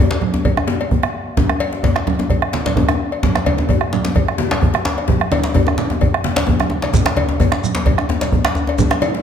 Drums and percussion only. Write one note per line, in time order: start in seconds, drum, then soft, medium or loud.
0.11 djembe slap loud
0.11 high conga soft
0.22 low conga medium
0.34 djembe slap medium
0.34 djembe tone medium
0.45 bombo low loud
0.45 cowbell soft
0.45 djembe slap soft
0.45 djembe bass medium
0.57 bombo rim medium
0.57 djembe tone medium
0.68 bombo rim soft
0.68 djembe slap medium
0.68 djembe tone medium
0.68 high conga medium
0.80 cowbell medium
0.80 high conga soft
0.91 bombo low loud
0.91 djembe bass medium
1.03 bombo rim medium
1.03 djembe slap medium
1.03 djembe tone medium
1.14 high conga soft
1.37 bombo low medium
1.37 djembe slap medium
1.37 djembe tone loud
1.37 djembe bass medium
1.37 low conga medium
1.50 bombo rim medium
1.50 djembe tone medium
1.50 high conga soft
1.60 cowbell medium
1.73 djembe slap medium
1.83 bombo low medium
1.83 cowbell medium
1.83 djembe slap medium
1.83 djembe tone medium
1.83 djembe bass medium
1.96 bombo rim medium
1.96 djembe slap medium
1.96 high conga soft
2.07 djembe tone loud
2.07 low conga medium
2.19 djembe slap medium
2.19 djembe tone medium
2.30 bombo low loud
2.30 cowbell medium
2.30 djembe slap soft
2.30 high conga soft
2.30 djembe bass medium
2.42 bombo rim medium
2.53 bombo rim soft
2.53 djembe slap medium
2.53 high conga medium
2.66 cowbell soft
2.66 djembe slap loud
2.66 high conga soft
2.66 low conga medium
2.76 bombo low loud
2.76 djembe tone loud
2.76 djembe bass medium
2.89 bombo rim medium
2.89 djembe slap medium
2.89 djembe tone medium
3.01 high conga soft
3.12 cowbell soft
3.23 bombo low medium
3.23 djembe slap medium
3.23 djembe bass medium
3.23 low conga medium
3.35 bombo rim medium
3.35 djembe slap medium
3.35 djembe tone medium
3.35 high conga soft
3.46 cowbell medium
3.46 djembe tone loud
3.46 high conga medium
3.58 djembe slap medium
3.58 djembe tone medium
3.69 bombo low loud
3.69 cowbell soft
3.69 djembe tone medium
3.69 djembe bass medium
3.81 bombo rim medium
3.81 high conga soft
3.93 djembe slap medium
3.93 low conga medium
4.04 djembe slap medium
4.04 djembe tone medium
4.15 bombo low loud
4.15 cowbell soft
4.15 djembe slap soft
4.15 high conga soft
4.15 djembe bass medium
4.28 bombo rim medium
4.38 bombo rim soft
4.38 djembe slap medium
4.38 djembe tone medium
4.38 high conga medium
4.51 cowbell soft
4.51 djembe slap loud
4.51 high conga soft
4.51 low conga medium
4.61 bombo low loud
4.61 djembe bass medium
4.74 bombo rim medium
4.74 djembe slap medium
4.74 djembe tone medium
4.85 djembe slap loud
4.85 high conga soft
4.98 cowbell soft
5.08 bombo low medium
5.08 djembe slap medium
5.08 djembe bass medium
5.08 low conga medium
5.20 bombo rim medium
5.20 djembe slap soft
5.20 djembe tone medium
5.20 high conga soft
5.32 bombo rim soft
5.32 cowbell medium
5.32 high conga medium
5.32 djembe tone loud
5.43 bombo rim soft
5.43 djembe slap medium
5.43 high conga soft
5.54 bombo low loud
5.54 cowbell medium
5.54 djembe tone medium
5.54 djembe bass medium
5.67 bombo rim medium
5.67 djembe tone loud
5.67 high conga soft
5.78 djembe slap medium
5.78 high conga soft
5.78 low conga medium
5.90 bombo rim soft
5.90 djembe slap medium
5.90 djembe tone medium
6.01 bombo low loud
6.01 cowbell soft
6.01 djembe slap soft
6.01 high conga soft
6.01 djembe bass medium
6.14 bombo rim medium
6.24 bombo rim soft
6.24 djembe slap medium
6.24 djembe tone medium
6.24 high conga medium
6.36 cowbell soft
6.36 djembe slap loud
6.36 low conga medium
6.47 bombo rim soft
6.47 bombo low medium
6.47 djembe tone medium
6.47 djembe bass medium
6.47 low conga medium
6.60 bombo rim medium
6.60 djembe slap medium
6.60 djembe tone medium
6.60 low conga medium
6.70 bombo rim soft
6.70 djembe tone medium
6.70 high conga medium
6.82 cowbell medium
6.82 djembe slap medium
6.82 high conga medium
6.94 bombo low medium
6.94 djembe slap medium
6.94 djembe bass medium
6.94 low conga medium
6.94 shekere medium
7.06 bombo rim medium
7.06 djembe slap loud
7.06 djembe tone medium
7.06 high conga soft
7.06 shekere soft
7.16 cowbell medium
7.16 djembe tone medium
7.16 high conga medium
7.29 djembe slap medium
7.29 djembe tone medium
7.40 bombo low loud
7.40 cowbell medium
7.40 djembe tone medium
7.40 djembe bass medium
7.40 shekere soft
7.52 bombo rim medium
7.52 djembe slap medium
7.52 high conga soft
7.64 low conga medium
7.64 shekere medium
7.75 djembe slap loud
7.75 djembe slap medium
7.75 djembe tone medium
7.86 bombo low loud
7.86 cowbell medium
7.86 djembe slap soft
7.86 djembe tone medium
7.86 high conga soft
7.86 djembe bass medium
7.98 bombo rim medium
7.98 djembe tone medium
8.09 bombo rim soft
8.09 djembe slap medium
8.09 djembe tone medium
8.21 cowbell medium
8.21 djembe slap medium
8.21 high conga soft
8.21 low conga medium
8.21 shekere soft
8.32 bombo low loud
8.32 djembe bass medium
8.45 bombo rim medium
8.45 djembe slap loud
8.45 djembe tone medium
8.45 shekere soft
8.55 djembe tone medium
8.55 high conga soft
8.55 shekere soft
8.67 cowbell soft
8.67 djembe tone medium
8.78 bombo low medium
8.78 djembe slap medium
8.78 djembe tone medium
8.78 djembe bass medium
8.78 low conga medium
8.78 shekere medium
8.91 bombo rim medium
8.91 djembe slap medium
8.91 djembe tone soft
8.91 high conga soft
8.91 shekere soft
9.02 cowbell medium
9.02 high conga medium
9.02 shekere soft
9.15 djembe slap medium